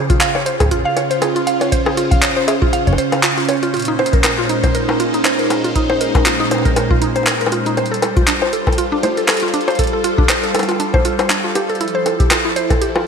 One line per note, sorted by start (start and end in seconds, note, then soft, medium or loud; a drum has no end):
0.00 3.74 C#3 medium
0.00 4.97 F4 medium
0.00 0.74 G4 medium
0.10 0.14 F4 loud
0.10 kick loud
0.10 closed hi-hat medium
0.21 0.34 F5 loud
0.21 clap loud
0.21 closed hi-hat medium
0.33 7.77 C#4 medium
0.33 0.43 C#5 medium
0.33 high bongo medium
0.46 0.56 C5 loud
0.46 closed hi-hat medium
0.60 0.65 G#4 loud
0.60 kick loud
0.60 closed hi-hat medium
0.60 high bongo medium
0.63 kick medium
0.66 kick medium
0.69 0.77 F4 loud
0.69 kick medium
0.69 closed hi-hat medium
0.71 kick soft
0.75 kick soft
0.78 kick soft
0.82 0.96 F5 loud
0.82 kick soft
0.97 1.06 C#5 medium
0.97 closed hi-hat medium
0.97 high bongo medium
1.11 1.18 C5 loud
1.11 closed hi-hat medium
1.22 1.28 G#4 loud
1.22 closed hi-hat medium
1.22 high bongo medium
1.36 1.40 F4 loud
1.36 closed hi-hat soft
1.47 1.60 F5 loud
1.47 closed hi-hat medium
1.53 12.60 C5 medium
1.61 1.69 C#5 medium
1.61 closed hi-hat medium
1.61 high bongo medium
1.72 1.82 C5 loud
1.72 kick medium
1.72 closed hi-hat medium
1.86 1.91 G#4 loud
1.86 high bongo medium
1.97 2.03 F4 loud
1.97 closed hi-hat medium
2.11 2.22 F5 loud
2.11 kick loud
2.11 closed hi-hat soft
2.23 2.32 C#5 medium
2.23 clap loud
2.23 closed hi-hat medium
2.37 2.44 C5 loud
2.48 2.54 G#4 loud
2.48 closed hi-hat medium
2.48 high bongo medium
2.62 2.66 F4 loud
2.62 kick loud
2.73 2.86 F5 loud
2.73 closed hi-hat medium
2.87 2.95 C#5 medium
2.87 kick loud
2.87 closed hi-hat soft
2.89 kick loud
2.92 kick medium
2.92 high bongo soft
2.94 kick medium
2.96 3.04 C5 medium
2.96 kick medium
2.96 closed hi-hat medium
3.12 3.20 F5 medium
3.12 closed hi-hat medium
3.12 high bongo medium
3.23 3.33 F4 loud
3.23 clap loud
3.23 closed hi-hat medium
3.38 3.42 F4 medium
3.38 closed hi-hat soft
3.40 closed hi-hat soft
3.45 closed hi-hat soft
3.49 3.54 C#5 loud
3.49 closed hi-hat medium
3.49 high bongo soft
3.57 closed hi-hat soft
3.63 3.67 F4 loud
3.63 closed hi-hat medium
3.74 7.77 A#2 medium
3.74 3.80 F4 loud
3.74 closed hi-hat soft
3.77 closed hi-hat soft
3.80 closed hi-hat soft
3.82 closed hi-hat medium
3.85 3.93 D#4 loud
3.85 closed hi-hat medium
3.99 4.12 C5 loud
3.99 high bongo medium
4.06 closed hi-hat medium
4.13 4.21 A#4 medium
4.13 kick loud
4.13 closed hi-hat soft
4.21 7.77 G#3 medium
4.21 4.38 A#4 medium
4.21 clap loud
4.21 closed hi-hat medium
4.21 high bongo medium
4.38 7.77 D#4 medium
4.38 4.43 F4 loud
4.49 4.55 D#4 loud
4.49 closed hi-hat medium
4.64 4.74 C5 medium
4.64 kick loud
4.64 closed hi-hat soft
4.64 high bongo soft
4.75 4.84 A#4 medium
4.75 closed hi-hat medium
4.89 4.99 A#4 medium
4.89 high bongo medium
5.00 5.06 F4 loud
5.00 closed hi-hat medium
5.14 5.19 D#4 loud
5.14 closed hi-hat soft
5.25 5.39 C5 loud
5.25 clap loud
5.25 closed hi-hat medium
5.25 high bongo medium
5.39 5.47 A#4 medium
5.39 closed hi-hat soft
5.50 5.64 A#4 medium
5.50 closed hi-hat medium
5.50 high bongo medium
5.64 5.69 F4 loud
5.64 closed hi-hat soft
5.76 5.81 D#4 loud
5.76 kick medium
5.76 closed hi-hat medium
5.90 6.00 C5 loud
5.90 high bongo medium
6.01 6.10 A#4 medium
6.01 closed hi-hat medium
6.15 6.25 A#4 medium
6.15 kick loud
6.15 closed hi-hat soft
6.15 high bongo medium
6.26 6.32 F4 loud
6.26 clap loud
6.26 closed hi-hat medium
6.40 6.45 D#4 loud
6.51 6.65 C5 loud
6.51 closed hi-hat medium
6.51 high bongo medium
6.55 high bongo soft
6.58 high bongo soft
6.62 kick loud
6.62 closed hi-hat soft
6.62 high bongo soft
6.65 6.73 A#4 medium
6.65 high bongo soft
6.68 high bongo soft
6.71 high bongo soft
6.74 closed hi-hat medium
6.74 high bongo soft
6.76 6.90 A#4 medium
6.76 high bongo medium
6.91 6.95 F4 loud
6.91 kick loud
7.02 7.07 D#4 loud
7.02 closed hi-hat medium
7.16 7.26 C5 loud
7.16 closed hi-hat medium
7.16 high bongo soft
7.23 7.36 A#4 medium
7.23 clap loud
7.23 closed hi-hat medium
7.23 high bongo soft
7.31 high bongo soft
7.41 7.52 A#4 medium
7.41 closed hi-hat soft
7.46 high bongo medium
7.52 7.58 F4 loud
7.52 closed hi-hat medium
7.66 7.71 D#4 loud
7.66 closed hi-hat medium
7.77 11.81 G3 medium
7.77 7.91 C5 loud
7.77 closed hi-hat soft
7.77 high bongo medium
7.86 closed hi-hat soft
7.91 7.99 A4 medium
7.91 closed hi-hat medium
8.02 8.16 A4 medium
8.02 closed hi-hat medium
8.02 high bongo medium
8.13 11.81 F4 medium
8.13 8.21 F4 loud
8.13 kick loud
8.13 closed hi-hat soft
8.28 8.33 D4 loud
8.28 clap loud
8.28 closed hi-hat medium
8.42 8.52 C5 loud
8.42 high bongo medium
8.53 8.62 A4 medium
8.53 13.07 A4 medium
8.53 closed hi-hat medium
8.67 8.78 A4 medium
8.67 kick loud
8.67 high bongo medium
8.73 closed hi-hat soft
8.78 8.84 F4 loud
8.78 closed hi-hat medium
8.92 8.97 D4 loud
9.03 9.17 C5 loud
9.03 closed hi-hat medium
9.03 high bongo medium
9.17 9.25 A4 medium
9.17 closed hi-hat medium
9.28 9.42 A4 medium
9.28 clap loud
9.28 closed hi-hat soft
9.28 high bongo medium
9.31 closed hi-hat soft
9.34 closed hi-hat medium
9.37 closed hi-hat medium
9.40 9.47 F4 loud
9.40 closed hi-hat medium
9.48 closed hi-hat soft
9.54 9.59 D4 loud
9.54 closed hi-hat medium
9.61 closed hi-hat soft
9.68 9.78 C5 loud
9.68 closed hi-hat soft
9.68 high bongo medium
9.71 closed hi-hat soft
9.75 kick medium
9.75 closed hi-hat soft
9.79 9.89 A4 medium
9.79 closed hi-hat medium
9.84 closed hi-hat soft
9.87 closed hi-hat soft
9.93 10.04 A4 medium
10.04 10.10 F4 loud
10.04 closed hi-hat medium
10.18 10.23 D4 loud
10.18 kick loud
10.29 10.43 C5 loud
10.29 clap loud
10.29 closed hi-hat medium
10.29 high bongo medium
10.44 10.51 A4 medium
10.44 closed hi-hat soft
10.55 10.68 A4 medium
10.55 closed hi-hat medium
10.55 high bongo medium
10.59 closed hi-hat medium
10.59 high bongo medium
10.63 closed hi-hat medium
10.63 high bongo medium
10.69 10.73 F4 loud
10.69 closed hi-hat medium
10.69 high bongo soft
10.71 high bongo soft
10.76 10.86 D4 loud
10.76 closed hi-hat medium
10.76 high bongo soft
10.94 11.04 C5 loud
10.94 kick loud
10.94 high bongo medium
11.05 11.15 F4 medium
11.05 closed hi-hat medium
11.19 11.30 C5 medium
11.19 closed hi-hat medium
11.19 high bongo medium
11.30 11.36 D4 medium
11.30 clap loud
11.30 closed hi-hat medium
11.44 11.52 F4 medium
11.55 11.61 G4 loud
11.55 closed hi-hat medium
11.55 high bongo medium
11.70 11.77 A4 medium
11.70 closed hi-hat soft
11.75 closed hi-hat soft
11.80 13.07 F3 medium
11.80 11.86 E4 loud
11.80 closed hi-hat medium
11.88 closed hi-hat soft
11.95 12.05 C5 loud
12.06 13.07 E4 medium
12.06 12.15 A4 medium
12.06 closed hi-hat medium
12.06 high bongo medium
12.20 12.31 G4 medium
12.20 kick loud
12.20 closed hi-hat medium
12.31 12.37 F4 loud
12.31 clap loud
12.31 closed hi-hat medium
12.31 high bongo medium
12.45 12.50 E4 loud
12.56 12.70 C5 loud
12.56 closed hi-hat medium
12.70 12.78 A4 medium
12.70 kick loud
12.70 closed hi-hat medium
12.70 high bongo medium
12.81 12.95 G4 medium
12.81 closed hi-hat medium
12.96 13.00 F4 loud
12.96 high bongo medium
13.00 13.07 G4 medium